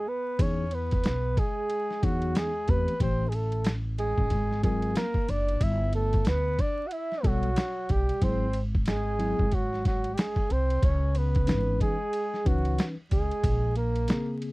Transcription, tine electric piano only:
0.39 0.64 E3 medium
0.39 0.64 B3 medium
0.39 0.64 D#4 medium
0.39 0.64 G#4 medium
2.03 2.50 E3 medium
2.03 2.51 B3 medium
2.03 2.51 D#4 medium
2.03 2.51 G#4 medium
2.68 2.92 E3 medium
2.68 2.92 A3 medium
2.68 2.92 C4 medium
2.68 2.93 G4 medium
3.00 3.25 E3 medium
3.00 3.25 A3 medium
3.00 3.25 C4 medium
3.00 3.25 G4 medium
4.63 5.03 F#3 medium
4.63 5.03 C4 medium
4.63 5.04 F4 medium
4.63 5.04 A#4 medium
7.23 7.48 G3 medium
7.23 7.48 B3 medium
7.23 7.49 F#4 medium
7.23 7.49 A4 medium
8.22 8.46 F#3 medium
8.22 8.47 C4 medium
8.22 8.47 E4 medium
8.22 8.47 G#4 medium
9.19 9.44 F#3 medium
9.19 9.44 C4 medium
9.19 9.44 E4 medium
9.19 9.44 G#4 medium
11.47 11.95 E3 medium
11.47 11.96 C#4 medium
11.47 11.96 D#4 medium
11.47 11.96 B4 medium
12.45 12.93 E3 medium
12.45 12.94 C#4 medium
12.45 12.94 D#4 medium
12.45 12.94 B4 medium
14.08 14.52 C#3 medium
14.08 14.52 A#3 medium
14.08 14.52 C4 medium
14.08 14.52 G#4 medium

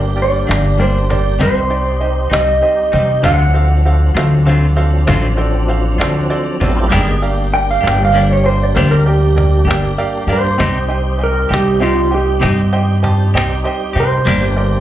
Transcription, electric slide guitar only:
0.22 0.81 D5 medium
0.82 1.12 C5 medium
1.12 1.42 D5 medium
1.43 2.36 C5 medium
2.33 3.25 D#5 medium
3.26 6.27 F#5 medium
7.54 7.68 G5 medium
7.71 7.84 F5 medium
7.88 8.01 G5 medium
8.05 8.17 F5 medium
8.17 8.31 D5 medium
8.33 8.45 C#5 medium
8.46 8.60 C5 medium
8.63 8.77 D5 medium
8.77 8.91 C5 medium
8.91 9.06 A#4 medium
9.08 9.67 G4 medium
10.33 11.20 C5 medium
11.23 11.52 A#4 medium
11.54 11.82 G4 medium
11.82 12.12 F4 medium
12.15 12.43 G4 loud
14.00 14.80 C5 loud

